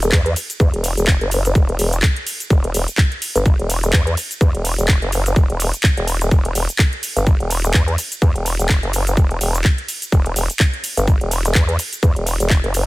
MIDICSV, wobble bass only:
0, 0, Header, 1, 2, 480
1, 0, Start_track
1, 0, Key_signature, 1, "minor"
1, 0, Tempo, 476190
1, 605, Time_signature, 4, 2, 24, 8
1, 12964, End_track
2, 0, Start_track
2, 0, Title_t, "Wobble bass"
2, 0, Program_c, 0, 39
2, 0, Note_on_c, 0, 28, 101
2, 108, Note_off_c, 0, 28, 0
2, 125, Note_on_c, 0, 40, 97
2, 348, Note_off_c, 0, 40, 0
2, 604, Note_on_c, 0, 40, 99
2, 720, Note_off_c, 0, 40, 0
2, 742, Note_on_c, 0, 28, 98
2, 960, Note_off_c, 0, 28, 0
2, 981, Note_on_c, 0, 28, 99
2, 1200, Note_off_c, 0, 28, 0
2, 1222, Note_on_c, 0, 30, 104
2, 1548, Note_off_c, 0, 30, 0
2, 1564, Note_on_c, 0, 28, 98
2, 1788, Note_off_c, 0, 28, 0
2, 1805, Note_on_c, 0, 28, 99
2, 2028, Note_off_c, 0, 28, 0
2, 2524, Note_on_c, 0, 28, 100
2, 2748, Note_off_c, 0, 28, 0
2, 2765, Note_on_c, 0, 28, 99
2, 2880, Note_off_c, 0, 28, 0
2, 3382, Note_on_c, 0, 31, 100
2, 3600, Note_off_c, 0, 31, 0
2, 3622, Note_on_c, 0, 28, 103
2, 3948, Note_off_c, 0, 28, 0
2, 3964, Note_on_c, 0, 40, 99
2, 4188, Note_off_c, 0, 40, 0
2, 4444, Note_on_c, 0, 40, 96
2, 4560, Note_off_c, 0, 40, 0
2, 4582, Note_on_c, 0, 28, 97
2, 4800, Note_off_c, 0, 28, 0
2, 4822, Note_on_c, 0, 28, 101
2, 5040, Note_off_c, 0, 28, 0
2, 5062, Note_on_c, 0, 30, 102
2, 5388, Note_off_c, 0, 30, 0
2, 5405, Note_on_c, 0, 28, 102
2, 5520, Note_off_c, 0, 28, 0
2, 5542, Note_on_c, 0, 28, 99
2, 5760, Note_off_c, 0, 28, 0
2, 6022, Note_on_c, 0, 28, 99
2, 6348, Note_off_c, 0, 28, 0
2, 6365, Note_on_c, 0, 28, 100
2, 6588, Note_off_c, 0, 28, 0
2, 6604, Note_on_c, 0, 28, 98
2, 6720, Note_off_c, 0, 28, 0
2, 7222, Note_on_c, 0, 31, 99
2, 7440, Note_off_c, 0, 31, 0
2, 7462, Note_on_c, 0, 28, 104
2, 7788, Note_off_c, 0, 28, 0
2, 7804, Note_on_c, 0, 40, 99
2, 8028, Note_off_c, 0, 40, 0
2, 8284, Note_on_c, 0, 40, 98
2, 8400, Note_off_c, 0, 40, 0
2, 8422, Note_on_c, 0, 28, 100
2, 8640, Note_off_c, 0, 28, 0
2, 8662, Note_on_c, 0, 28, 101
2, 8880, Note_off_c, 0, 28, 0
2, 8902, Note_on_c, 0, 30, 103
2, 9228, Note_off_c, 0, 30, 0
2, 9244, Note_on_c, 0, 28, 101
2, 9468, Note_off_c, 0, 28, 0
2, 9485, Note_on_c, 0, 28, 96
2, 9708, Note_off_c, 0, 28, 0
2, 10204, Note_on_c, 0, 28, 99
2, 10428, Note_off_c, 0, 28, 0
2, 10444, Note_on_c, 0, 28, 101
2, 10560, Note_off_c, 0, 28, 0
2, 11062, Note_on_c, 0, 31, 100
2, 11280, Note_off_c, 0, 31, 0
2, 11302, Note_on_c, 0, 28, 105
2, 11628, Note_off_c, 0, 28, 0
2, 11644, Note_on_c, 0, 40, 96
2, 11868, Note_off_c, 0, 40, 0
2, 12124, Note_on_c, 0, 40, 99
2, 12240, Note_off_c, 0, 40, 0
2, 12262, Note_on_c, 0, 28, 100
2, 12480, Note_off_c, 0, 28, 0
2, 12501, Note_on_c, 0, 28, 104
2, 12719, Note_off_c, 0, 28, 0
2, 12740, Note_on_c, 0, 30, 103
2, 12964, Note_off_c, 0, 30, 0
2, 12964, End_track
0, 0, End_of_file